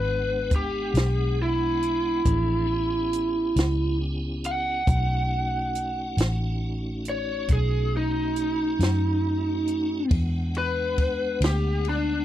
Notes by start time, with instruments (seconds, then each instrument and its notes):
Already playing: fingered electric bass G#1, tonewheel organ G#3 B3 D4 F#5, lead electric guitar B4
0.51 kick, closed hi-hat
0.56 lead electric guitar G4
0.94 fingered electric bass B1, snare, closed hi-hat
1.42 lead electric guitar E4
1.82 closed hi-hat
2.25 fingered electric bass A1, tonewheel organ F3 C4 D4 G#4, kick, closed hi-hat
2.66 tonewheel organ B3 C#4 E4 G4
3.13 closed hi-hat
3.56 fingered electric bass C#2, snare, closed hi-hat
4.44 lead electric guitar F#5, closed hi-hat
4.87 fingered electric bass B1, tonewheel organ A3 C#4 D#4 F#4, kick, closed hi-hat
5.75 closed hi-hat
6.17 fingered electric bass A1, snare, closed hi-hat
7.05 closed hi-hat
7.09 lead electric guitar C#5
7.48 fingered electric bass B1, kick, closed hi-hat
7.53 lead electric guitar G#4
7.97 lead electric guitar D#4
8.36 closed hi-hat
8.79 fingered electric bass F#2, snare, closed hi-hat
9.68 closed hi-hat
10.09 fingered electric bass E2, tonewheel organ G#3 B3 D4 F#5, kick, ride
10.55 lead electric guitar B4, ride
10.98 kick, ride
11.41 fingered electric bass D2, snare, ride
11.45 lead electric guitar G4
11.85 ride
11.89 lead electric guitar D4